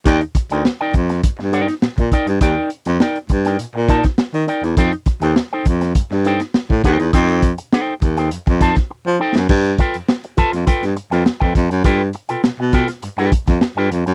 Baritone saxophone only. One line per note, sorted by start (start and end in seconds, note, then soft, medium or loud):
0.05 0.19 D#2 loud
0.51 0.63 D2 medium
0.94 1.19 F2 medium
1.24 1.30 G2 soft
1.39 1.64 G2 medium
1.82 1.89 A#2 soft
1.98 2.10 A#2 medium
2.27 2.39 G2 loud
2.41 2.54 D#2 medium
2.86 2.98 F2 loud
3.30 3.55 G2 medium
3.59 3.66 A#2 soft
3.75 4.00 A#2 medium
4.34 4.46 D#3 medium
4.63 4.75 E2 medium
4.77 4.90 F2 medium
5.22 5.34 D#2 loud
5.66 5.91 F2 medium
5.95 6.02 G2 soft
6.11 6.36 G2 medium
6.70 6.82 A2 medium
6.84 6.97 D#2 loud
6.99 7.11 E2 medium
7.13 7.51 F2 loud
8.02 8.27 D#2 medium
8.32 8.38 F2 soft
8.47 8.72 F2 medium
9.06 9.18 F3 medium
9.36 9.47 F#2 medium
9.50 9.74 G2 loud
9.95 10.00 F2 medium
10.38 10.44 F2 soft
10.53 10.65 F2 medium
10.67 10.73 G2 soft
10.82 10.94 G2 medium
11.12 11.24 F2 medium
11.42 11.53 F2 medium
11.55 11.68 F2 loud
11.71 11.82 F#2 loud
11.85 12.09 G2 medium
12.30 12.35 B2 medium
12.44 12.50 B2 soft
12.59 12.84 B2 medium
13.03 13.09 G2 soft
13.18 13.30 G2 medium
13.48 13.59 F2 medium
13.77 13.89 G2 medium
13.91 14.04 F2 medium
14.06 14.14 F#2 medium